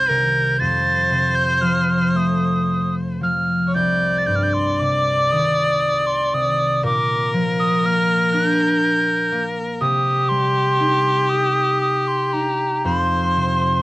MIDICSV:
0, 0, Header, 1, 4, 480
1, 0, Start_track
1, 0, Tempo, 1022147
1, 282, Time_signature, 6, 3, 24, 8
1, 765, Tempo, 1050788
1, 2685, Tempo, 996678
1, 5085, Tempo, 1027397
1, 6489, End_track
2, 0, Start_track
2, 0, Title_t, "Tin whistle"
2, 0, Program_c, 0, 75
2, 0, Note_on_c, 0, 91, 110
2, 280, Note_on_c, 0, 93, 106
2, 287, Note_off_c, 0, 91, 0
2, 635, Note_on_c, 0, 91, 89
2, 642, Note_off_c, 0, 93, 0
2, 758, Note_on_c, 0, 89, 82
2, 765, Note_off_c, 0, 91, 0
2, 1009, Note_on_c, 0, 87, 73
2, 1016, Note_off_c, 0, 89, 0
2, 1369, Note_off_c, 0, 87, 0
2, 1497, Note_on_c, 0, 89, 78
2, 1721, Note_off_c, 0, 89, 0
2, 1733, Note_on_c, 0, 91, 84
2, 1932, Note_on_c, 0, 93, 70
2, 1939, Note_off_c, 0, 91, 0
2, 1969, Note_on_c, 0, 91, 71
2, 1976, Note_off_c, 0, 93, 0
2, 2011, Note_on_c, 0, 89, 68
2, 2018, Note_off_c, 0, 91, 0
2, 2045, Note_on_c, 0, 91, 63
2, 2052, Note_off_c, 0, 89, 0
2, 2093, Note_on_c, 0, 84, 66
2, 2100, Note_off_c, 0, 91, 0
2, 2212, Note_on_c, 0, 86, 71
2, 2219, Note_off_c, 0, 84, 0
2, 2449, Note_on_c, 0, 87, 81
2, 2455, Note_off_c, 0, 86, 0
2, 2797, Note_on_c, 0, 84, 75
2, 2804, Note_off_c, 0, 87, 0
2, 2930, Note_on_c, 0, 87, 80
2, 2937, Note_off_c, 0, 84, 0
2, 3171, Note_off_c, 0, 87, 0
2, 3176, Note_on_c, 0, 86, 86
2, 3394, Note_off_c, 0, 86, 0
2, 3535, Note_on_c, 0, 87, 90
2, 3660, Note_on_c, 0, 89, 85
2, 3667, Note_off_c, 0, 87, 0
2, 3888, Note_on_c, 0, 91, 93
2, 3895, Note_off_c, 0, 89, 0
2, 4424, Note_off_c, 0, 91, 0
2, 4601, Note_on_c, 0, 87, 102
2, 4832, Note_on_c, 0, 84, 92
2, 4839, Note_off_c, 0, 87, 0
2, 5309, Note_on_c, 0, 87, 78
2, 5316, Note_off_c, 0, 84, 0
2, 5549, Note_off_c, 0, 87, 0
2, 5552, Note_on_c, 0, 87, 86
2, 5674, Note_on_c, 0, 84, 74
2, 5681, Note_off_c, 0, 87, 0
2, 5793, Note_on_c, 0, 82, 74
2, 5800, Note_off_c, 0, 84, 0
2, 6034, Note_on_c, 0, 84, 78
2, 6041, Note_off_c, 0, 82, 0
2, 6489, Note_off_c, 0, 84, 0
2, 6489, End_track
3, 0, Start_track
3, 0, Title_t, "Viola"
3, 0, Program_c, 1, 41
3, 0, Note_on_c, 1, 72, 127
3, 42, Note_on_c, 1, 70, 92
3, 49, Note_off_c, 1, 72, 0
3, 281, Note_off_c, 1, 70, 0
3, 285, Note_on_c, 1, 72, 98
3, 1475, Note_off_c, 1, 72, 0
3, 1697, Note_on_c, 1, 73, 57
3, 1730, Note_on_c, 1, 74, 103
3, 1736, Note_off_c, 1, 73, 0
3, 3169, Note_on_c, 1, 70, 110
3, 3176, Note_off_c, 1, 74, 0
3, 4601, Note_on_c, 1, 67, 113
3, 4608, Note_off_c, 1, 70, 0
3, 6036, Note_on_c, 1, 72, 85
3, 6043, Note_off_c, 1, 67, 0
3, 6489, Note_off_c, 1, 72, 0
3, 6489, End_track
4, 0, Start_track
4, 0, Title_t, "Harp"
4, 0, Program_c, 2, 46
4, 0, Note_on_c, 2, 36, 65
4, 0, Note_on_c, 2, 51, 53
4, 45, Note_on_c, 2, 48, 48
4, 68, Note_off_c, 2, 51, 0
4, 285, Note_on_c, 2, 41, 56
4, 306, Note_off_c, 2, 36, 0
4, 306, Note_off_c, 2, 48, 0
4, 518, Note_on_c, 2, 48, 46
4, 759, Note_on_c, 2, 53, 50
4, 1000, Note_on_c, 2, 57, 44
4, 1481, Note_off_c, 2, 53, 0
4, 1487, Note_on_c, 2, 53, 40
4, 1733, Note_on_c, 2, 36, 51
4, 1758, Note_off_c, 2, 41, 0
4, 1758, Note_off_c, 2, 48, 0
4, 1758, Note_off_c, 2, 53, 0
4, 1971, Note_on_c, 2, 43, 42
4, 2214, Note_on_c, 2, 48, 45
4, 2238, Note_off_c, 2, 43, 0
4, 2451, Note_on_c, 2, 51, 48
4, 2474, Note_off_c, 2, 48, 0
4, 2521, Note_off_c, 2, 57, 0
4, 2925, Note_on_c, 2, 48, 47
4, 2952, Note_off_c, 2, 51, 0
4, 3168, Note_on_c, 2, 46, 67
4, 3194, Note_off_c, 2, 36, 0
4, 3194, Note_off_c, 2, 48, 0
4, 3408, Note_on_c, 2, 53, 52
4, 3650, Note_on_c, 2, 58, 61
4, 3890, Note_on_c, 2, 62, 58
4, 4362, Note_off_c, 2, 58, 0
4, 4364, Note_on_c, 2, 58, 58
4, 4599, Note_on_c, 2, 48, 67
4, 4627, Note_off_c, 2, 46, 0
4, 4627, Note_off_c, 2, 53, 0
4, 4839, Note_on_c, 2, 55, 57
4, 5079, Note_on_c, 2, 63, 56
4, 5107, Note_off_c, 2, 62, 0
4, 5321, Note_on_c, 2, 67, 54
4, 5794, Note_off_c, 2, 63, 0
4, 5796, Note_on_c, 2, 63, 50
4, 5888, Note_off_c, 2, 58, 0
4, 6033, Note_on_c, 2, 41, 59
4, 6061, Note_off_c, 2, 48, 0
4, 6061, Note_off_c, 2, 55, 0
4, 6275, Note_on_c, 2, 48, 45
4, 6420, Note_off_c, 2, 67, 0
4, 6489, Note_off_c, 2, 41, 0
4, 6489, Note_off_c, 2, 48, 0
4, 6489, Note_off_c, 2, 63, 0
4, 6489, End_track
0, 0, End_of_file